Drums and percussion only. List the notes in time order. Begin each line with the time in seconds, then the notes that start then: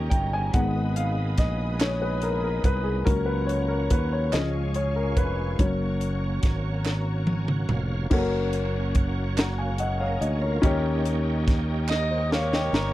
0.11 kick, closed hi-hat
0.54 kick, closed hi-hat
0.96 closed hi-hat
1.38 kick, snare, closed hi-hat
1.80 snare, clap, closed hi-hat
2.22 closed hi-hat
2.64 kick, closed hi-hat
3.07 kick, closed hi-hat
3.49 closed hi-hat
3.90 kick, closed hi-hat
4.33 snare, clap, closed hi-hat
4.74 closed hi-hat
5.17 kick, closed hi-hat
5.59 kick, closed hi-hat
6.01 closed hi-hat
6.43 kick, snare, closed hi-hat
6.85 snare, clap
7.27 high tom
7.48 mid tom
7.69 mid tom
8.11 kick, crash
8.53 closed hi-hat
8.95 kick, closed hi-hat
9.38 snare, clap, closed hi-hat
9.78 closed hi-hat
10.22 closed hi-hat
10.63 kick, closed hi-hat
11.05 closed hi-hat
11.48 kick, snare, closed hi-hat
11.88 snare, clap
12.32 snare
12.53 snare
12.74 snare